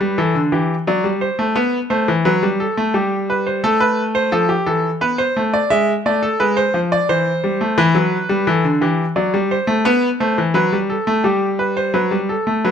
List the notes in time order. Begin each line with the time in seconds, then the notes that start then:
Already playing: B4
0.01 G3
0.18 E3 A4
0.35 D3
0.52 E3 G4
0.87 F#3 D5
1.04 G3
1.21 C5
1.39 A3
1.56 B3 B4
1.90 A3 C5
2.08 E3
2.25 F#3 B4
2.43 G3
2.60 A4
2.77 A3
2.94 G3 G4
3.30 B4
3.47 C5
3.64 A3 A4
3.80 B4
4.15 C5
4.32 F3 A4
4.49 G4
4.66 E3 A4
5.01 B3 B4
5.18 C5
5.37 A3
5.54 D5
5.70 G#3 E5
6.06 A3 D5
6.23 A4
6.40 G#3 B4
6.57 C5
6.74 F3
6.92 D5
7.09 E3 C5
7.44 G3
7.61 A3
7.78 E3 B4
7.95 F#3
8.29 G3
8.47 E3 A4
8.64 D3
8.81 E3 G4
9.16 F#3 D5
9.34 G3
9.51 C5
9.67 A3
9.85 B3 B4
10.20 A3 C5
10.38 E3
10.54 F#3 B4
10.72 G3
10.90 A4
11.07 A3
11.24 G3 G4
11.59 B4
11.77 C5
11.94 F#3 B4
12.11 G3
12.29 A4
12.47 A3
12.64 F#3 B4